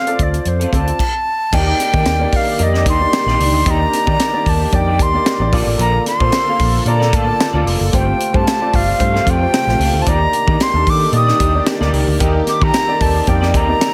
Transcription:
Already playing: C4 F4 A4 C5 D5 F5
0.06 C4 F4 A4 D5, muted clean electric guitar stroke, closed hi-hat
0.19 D2 D5, kick, closed hi-hat
0.33 muted clean electric guitar stroke, closed hi-hat
0.41 D5
0.45 F2 C5, muted clean electric guitar stroke, closed hi-hat
0.60 C4 F4 A4, closed hi-hat
0.72 D2 C4 F4 A4 D5 A5, kick, closed hi-hat
0.87 muted clean electric guitar stroke, closed hi-hat
0.99 kick, crash
1.52 D#2 D#3 A#3 D4 D#4 G4 D5 G5, kick, crash
1.67 muted clean electric guitar stroke
1.79 muted clean electric guitar stroke, snare, closed hi-hat
1.93 D#3 A#3 D#4 G4 D5, kick
2.05 D#2, muted clean electric guitar stroke, snare, closed hi-hat
2.19 A#3 D#4 G4 D5, muted clean electric guitar stroke
2.32 F5, kick, open hi-hat
2.47 muted clean electric guitar stroke
2.59 F2 A#3 D#4 G4 D5, muted clean electric guitar stroke, closed hi-hat
2.63 D#5
2.73 D#4 G4 D5, snare
2.86 D#2 D#4 G4 D#5 C6, kick, closed hi-hat
3.00 A#3 D#4 G4 D5, muted clean electric guitar stroke
3.13 muted clean electric guitar stroke, snare, closed hi-hat
3.26 A#1 A#3 D#4 G4 D5, snare
3.39 C#2 D#4 G4 D5, open hi-hat
3.54 D2, muted clean electric guitar stroke
3.66 D#2 A#3 D#4 G4 D5 D#5, kick, closed hi-hat
3.70 A#5
3.81 muted clean electric guitar stroke
3.93 muted clean electric guitar stroke, snare, closed hi-hat
4.06 D#3 A#3 D#4 G4 D5, kick
4.19 muted clean electric guitar stroke, snare, closed hi-hat
4.33 A#3 D#4 G4 D5, muted clean electric guitar stroke
4.46 D#2 A5, kick, open hi-hat
4.60 muted clean electric guitar stroke
4.72 F2 A#3 D#4 G4 D5 G5, muted clean electric guitar stroke, kick, closed hi-hat
4.87 D#4 G4 D5
4.99 D#2 C6, muted clean electric guitar stroke, kick, closed hi-hat
5.13 A#3 D#4 G4 D5, muted clean electric guitar stroke
5.26 muted clean electric guitar stroke, snare, closed hi-hat
5.39 A1 A#3 D#4 G4 D5, muted clean electric guitar stroke
5.52 A#1 D3 A#3 F4 A4 D5, kick, open hi-hat
5.67 A1 F4 A4 D5
5.79 A#1 F4 A4 D5 A#5, closed hi-hat
5.94 muted clean electric guitar stroke
6.06 C6, muted clean electric guitar stroke, snare, closed hi-hat
6.20 A#2 A#3 F4 A4 C5 D5, kick
6.32 muted clean electric guitar stroke, snare, closed hi-hat
6.47 A#3 F4 A4 F5, muted clean electric guitar stroke
6.59 A#1, kick, open hi-hat
6.73 muted clean electric guitar stroke
6.85 A#2 A#3 F4 A4 D5 A#5, muted clean electric guitar stroke, closed hi-hat
7.00 F4 A4 D5, snare
7.12 A2 F4 A4 F5 A5, kick, closed hi-hat
7.26 A#3 F4 A4 D5, muted clean electric guitar stroke
7.39 muted clean electric guitar stroke, snare, closed hi-hat
7.53 D2 A#3 F4 A4 D5
7.65 F1 F4 A4 D5, open hi-hat
7.80 F#1, muted clean electric guitar stroke
7.92 G1 C3 A3 C4 F4 G4 C5 G5, kick, closed hi-hat
8.07 muted clean electric guitar stroke
8.19 muted clean electric guitar stroke, closed hi-hat
8.33 G2 A3 C4 F4 G4 A4 C5 A5, kick
8.46 muted clean electric guitar stroke, snare, closed hi-hat
8.60 A3 F4 G4 D5, muted clean electric guitar stroke
8.73 G1 F5, kick, open hi-hat
8.87 muted clean electric guitar stroke
8.99 G2 A3 F4 G4 C5, muted clean electric guitar stroke, kick, closed hi-hat
9.14 C4 F4 A4, snare
9.25 F2 C4 F4 A4, kick, closed hi-hat
9.30 G5
9.40 A3 F4 G4 C5, muted clean electric guitar stroke
9.52 muted clean electric guitar stroke, snare, closed hi-hat
9.67 A#1 A3 F4 G4 C5, muted clean electric guitar stroke, snare
9.78 C#2 C4 F4 A4, open hi-hat
9.93 D2 C4 F4 A4
10.02 D#4 A5
10.06 D#2 D#3 A#3 D4 D#4 G4 D5 A#5, kick, closed hi-hat
10.20 muted clean electric guitar stroke
10.33 muted clean electric guitar stroke, closed hi-hat
10.46 D#3 A#3 D#4 G4 D5, kick
10.59 C6, muted clean electric guitar stroke, snare, closed hi-hat
10.73 D#2 A#3 D#4 G4 A4, muted clean electric guitar stroke
10.87 D#3 D6, kick, open hi-hat
11.01 muted clean electric guitar stroke
11.12 A#2 A#3 D#4 G4 D5 D#6, muted clean electric guitar stroke, closed hi-hat
11.27 D#4 G4 D5, snare
11.39 D#2 D#4 G4 D#5, kick, closed hi-hat
11.54 A#3 D#4 G4 D5, muted clean electric guitar stroke
11.66 muted clean electric guitar stroke, snare, closed hi-hat
11.80 D2 A#3 D#4 G4 D5, snare
11.92 C#2 D#4 G4 D5, open hi-hat
12.07 D2, muted clean electric guitar stroke
12.19 D#2 A#3 C4 D#4 G4 A#4 D#5, kick, closed hi-hat
12.35 muted clean electric guitar stroke
12.46 D6, muted clean electric guitar stroke, snare, closed hi-hat
12.61 D#3 A#3 D#4 G4 A4 D5 A#5, kick
12.73 muted clean electric guitar stroke, snare, closed hi-hat
12.87 A#3 D#4 G4 D5, muted clean electric guitar stroke
13.00 D#2 A5, kick, open hi-hat
13.15 muted clean electric guitar stroke
13.27 F2 A#3 D#4 G4 D5 G5, muted clean electric guitar stroke, kick, closed hi-hat
13.41 D#4 G4 D5, snare
13.53 D#2 D#4 G4 D5 A#5, kick, closed hi-hat
13.68 A#3 D#4 G4 D5, muted clean electric guitar stroke
13.81 muted clean electric guitar stroke, snare, closed hi-hat

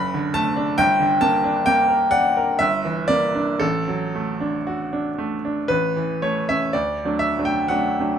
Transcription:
Already playing: F#1 B5
0.14 D3
0.34 A3 A5
0.56 D4
0.78 G1 G5
1.00 D3
1.21 A#3 A5
1.44 D4
1.66 A#3 G5
1.88 A#4
2.11 D5 F#5
2.37 A#4
2.59 G1 E5
2.85 E3
3.08 A#3 D5
3.35 D4
3.59 A1 A4
3.88 F#3
4.15 A3
4.40 D4
4.67 F#4
4.93 D4
5.18 A3
5.45 D4
5.68 A1 B4
5.96 E3
6.22 A3 C#5
6.49 C#4 E5
6.73 D2 D5
7.04 F#3 A3 D4
7.19 E5
7.38 F#3 A3 D4
7.45 G5
7.68 F#3 A3 D4 F#5
8.00 F#3 A3 D4

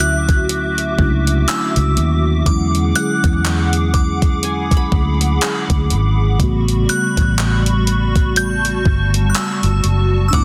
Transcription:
Already playing: D2 D3 F#3 A3 C#4 E4 F#4 E5 D6
0.00 F#6, closed hi-hat
0.29 kick, closed hi-hat
0.49 closed hi-hat
0.78 closed hi-hat
0.98 C#2 F#3 A3 C#4 D4 E4, kick
1.27 closed hi-hat
1.48 E6, clap, closed hi-hat
1.76 C#2, closed hi-hat
1.97 D#2, closed hi-hat
2.44 E2 D3 F#3 G#3 G#4 F#5 D6, kick, closed hi-hat
2.49 C#4 E4
2.75 closed hi-hat
2.95 F#5 F#6, closed hi-hat
3.24 E2, kick, closed hi-hat
3.45 clap, closed hi-hat
3.73 closed hi-hat
3.94 D6, kick, closed hi-hat
4.22 kick, closed hi-hat
4.43 G#5 B5, closed hi-hat
4.71 kick, closed hi-hat
4.77 B5
4.92 D2, kick
5.21 closed hi-hat
5.41 clap, closed hi-hat
5.70 D2, kick, closed hi-hat
5.90 G#1, closed hi-hat
6.37 A1 C#3 G3 A3 F#4 B5 C#6, kick, closed hi-hat
6.42 B3 F#4
6.68 closed hi-hat
6.89 F#6, closed hi-hat
7.17 A1, kick, closed hi-hat
7.38 clap, closed hi-hat
7.66 closed hi-hat
7.87 closed hi-hat
8.16 kick, closed hi-hat
8.36 A5 G6, closed hi-hat
8.65 closed hi-hat
8.85 G1, kick
9.14 closed hi-hat
9.30 F#6
9.35 E6, clap, closed hi-hat
9.63 G1, closed hi-hat
9.84 F#1, closed hi-hat
10.28 G3 D4 E6
10.33 G1 G3 A3 B3 E4 F#5 B5 D6, kick, closed hi-hat

